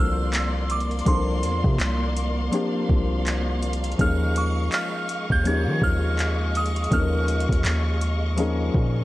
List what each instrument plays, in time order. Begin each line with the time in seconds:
Already playing: 808-style bass C2, felt piano F3 A#3 C4 D4 G4 A4, string section A#3 D5 F5 C6
0.00 synth bell E6
0.33 clap, closed hi-hat
0.70 synth bell D6, closed hi-hat
0.81 closed hi-hat
0.91 closed hi-hat
0.99 closed hi-hat
1.05 808-style bass C2, felt piano F3 A#3 C4 D4 A4, synth bell C6, kick, closed hi-hat
1.15 felt piano A#4
1.43 808-style bass E2, closed hi-hat
1.64 808-style bass C3, kick
1.79 808-style bass C2, clap, closed hi-hat
2.16 closed hi-hat
2.51 felt piano F3 A#3 C4 D4 G4, closed hi-hat
2.89 808-style bass C2, kick
3.26 clap, closed hi-hat
3.63 closed hi-hat, open hi-hat
3.73 closed hi-hat
3.84 closed hi-hat
3.92 closed hi-hat
3.98 808-style bass D#2, felt piano F3 A#3 C#4 D#4 G#4, string section G#3 D#5 C#6, synth bell F6, kick, closed hi-hat
4.36 synth bell C#6, closed hi-hat
4.72 synth bell F6, clap, closed hi-hat
5.09 closed hi-hat
5.30 808-style bass D#2, synth bell G6, kick
5.44 felt piano F3 A#3 C#4 D#4 G4, synth bell G#6, closed hi-hat
5.66 808-style bass D#3
5.82 808-style bass D#2, synth bell F6, kick
6.19 clap, closed hi-hat
6.55 synth bell D#6, closed hi-hat
6.66 closed hi-hat
6.76 closed hi-hat
6.84 closed hi-hat
6.90 808-style bass D#2, felt piano F3 A#3 C#4 D#4 A4, synth bell F6, kick, closed hi-hat
7.00 felt piano A#4
7.28 closed hi-hat
7.41 closed hi-hat
7.49 808-style bass D#2, kick, closed hi-hat
7.65 808-style bass D#2, clap, closed hi-hat
8.01 closed hi-hat
8.37 felt piano F3 A#3 C#4 D#4 G#4, closed hi-hat
8.75 808-style bass A#2, kick